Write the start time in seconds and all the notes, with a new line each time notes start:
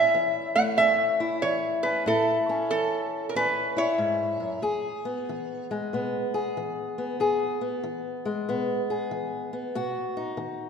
Already playing: C#4 E4 E5
0.14 E3
0.56 A3 F#5
0.78 E2 C#4 E5
1.20 E4
1.42 E3 C#5
1.83 C#4 B4
2.06 A2 E4 A4
2.49 C#4
2.71 E3 A4
3.29 A#4
3.35 E2 C#4 B4
3.77 E4 C#5
3.98 G#2
4.40 F#2
4.62 E2 G#4
5.05 B3
5.29 E3
5.71 G#3
5.93 B2 B3
6.34 G#4
6.57 E3
6.98 B3
7.20 E2 G#4
7.61 B3
7.83 E3
8.25 G#3
8.49 B2 B3
8.90 G#4
9.11 E3
9.53 B3
9.75 B2 F#4
10.17 D#4
10.37 D#3